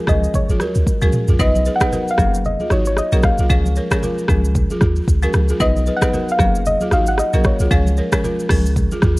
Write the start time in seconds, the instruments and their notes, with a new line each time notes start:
0.07 808-style bass C#2, marimba F3 G#3 C#4 G#4, synth pluck D#5, kick, cross-stick, high conga, low conga, shaker
0.24 shaker
0.34 synth pluck C#5, kick, low conga, shaker
0.49 808-style bass G#1, balafon F4 G#4, high conga, shaker
0.60 balafon F#4 A#4, cross-stick, high conga, shaker
0.75 808-style bass C#2, shaker
0.87 kick, high tom, shaker
1.01 808-style bass C#2, marimba F3 G#3 C#4 G#4, balafon F#4 A#4, high conga, shaker
1.12 mid tom, shaker
1.28 808-style bass A#1, balafon F4 G#4, floor tom, shaker
1.39 808-style bass B1, marimba F#3 B3 D#4 B4, balafon B4 D#5, synth pluck D#5, kick, low conga, shaker
1.55 high conga, shaker
1.65 balafon G#4 B4, shaker
1.76 synth pluck F#5
1.81 marimba F#3 B3 D#4 B4, balafon G#4 B4, kick, cross-stick, shaker
1.92 balafon F#4 A#4, low conga, shaker
2.08 synth pluck F5, shaker
2.18 808-style bass F#1, marimba F#3 A#3 C#4 G#4, kick, cross-stick, high conga, shaker
2.34 shaker
2.45 synth pluck D#5, low conga, shaker
2.60 balafon F4 G#4, high conga, shaker
2.70 808-style bass G#1, balafon D#4 F#4, synth pluck C#5, cross-stick, high conga, shaker
2.86 synth pluck C#5, shaker
2.97 synth pluck D#5, cross-stick, shaker
3.12 808-style bass A#1, marimba F#3 A#3 C#4 G#4, balafon F#4 A#4, high conga, shaker
3.23 synth pluck F5, kick, cross-stick, shaker
3.38 808-style bass B1, balafon F4 G#4, shaker
3.50 808-style bass C#2, marimba F3 G#3 C#4 G#4, balafon C#5 F5, kick, low conga, shaker
3.66 high conga, shaker
3.76 balafon A#4 C#5, shaker
3.91 marimba F3 G#3 C#4 G#4, balafon A#4 C#5, kick, cross-stick, shaker
4.03 balafon F4 A#4, low conga, shaker
4.18 shaker
4.28 808-style bass C#2, marimba F3 G#3 C#4 G#4, kick, cross-stick, high conga, shaker
4.45 shaker
4.55 kick, low conga, shaker
4.70 balafon F4 G#4, high conga, shaker
4.81 808-style bass D#2, balafon F4 G#4, kick, cross-stick, high conga, shaker
4.96 shaker
5.08 808-style bass C#2, kick, shaker
5.23 marimba F3 G#3 C#4 G#4, balafon F#4 A#4, high conga, shaker
5.33 808-style bass C#2, cross-stick, shaker
5.49 balafon F4 G#4, shaker
5.60 808-style bass B1, marimba F#3 B3 D#4 B4, balafon B4 D#5, synth pluck D#5, kick, low conga, shaker
5.76 high conga, shaker
5.87 balafon G#4 B4, shaker
5.97 synth pluck F#5
6.02 marimba F#3 B3 D#4 B4, balafon G#4 B4, kick, cross-stick, shaker
6.13 balafon F#4 A#4, low conga, shaker
6.29 synth pluck F5, shaker
6.39 808-style bass F#1, marimba F#3 A#3 C#4 G#4, kick, cross-stick, high conga, shaker
6.55 shaker
6.66 synth pluck D#5, low conga, shaker
6.81 balafon F4 G#4, high conga, shaker
6.91 808-style bass G#1, balafon D#4 F#4, synth pluck F5, cross-stick, high conga, shaker
7.07 synth pluck F#5, shaker
7.18 synth pluck D#5, cross-stick, shaker
7.33 808-style bass A#1, marimba F#3 A#3 C#4 G#4, balafon F#4 A#4, high conga, shaker
7.44 synth pluck C#5, kick, cross-stick, shaker
7.59 808-style bass B1, balafon F4 G#4, shaker
7.71 808-style bass C#2, marimba F3 G#3 C#4 G#4, balafon C#5 F5, kick, low conga, shaker
7.87 high conga, shaker
7.97 balafon A#4 C#5, shaker
8.12 marimba F3 G#3 C#4 G#4, balafon A#4 C#5, kick, cross-stick, shaker
8.24 balafon F4 A#4, low conga, shaker
8.39 shaker
8.49 808-style bass C#2, marimba F3 G#3 C#4 G#4, kick, cross-stick, open hi-hat, high conga, shaker
8.66 shaker
8.76 kick, low conga, shaker
8.91 balafon F4 G#4, high conga, shaker
9.02 808-style bass D#2, balafon F4 G#4, kick, cross-stick, high conga, shaker